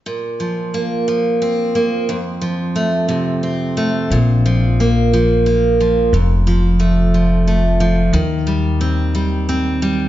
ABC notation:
X:1
M:6/8
L:1/8
Q:3/8=59
K:Fmix
V:1 name="Steel-string acoustic guitar" clef=bass
B,, F, B, F, C B, | F,, F, A, C, C A, | B,, F, B, F, B, F, | F,, F, A, F, A, F, |
E, G, C G, C G, |]
V:2 name="Upright bass" clef=bass
z6 | z6 | B,,,6 | F,,,6 |
E,,6 |]